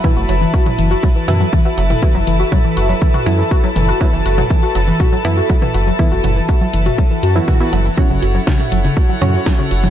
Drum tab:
HH |--x---x---x---x-|--x---x---x---x-|--x---x---x---x-|--x---xx--x---x-|
SH |xxxxx-xxxxxxx-xx|xxxxx-xxxxxxx-xx|xxxxx-xxxxxxx-xx|xxxxxxxxxxxxxxxx|
SD |----------------|----------------|----------------|----------------|
T2 |o----o----o----o|----o----o----o-|---o----o----o--|--o----o----o---|
BD |o---o---o---o---|o---o---o---o---|o---o---o---o---|o---o---o---o---|

HH |--x---x---x---x-|
SH |xxxxx-xxxxxxx-xx|
SD |----o-------o---|
T2 |o----o----o----o|
BD |o---o---o---o---|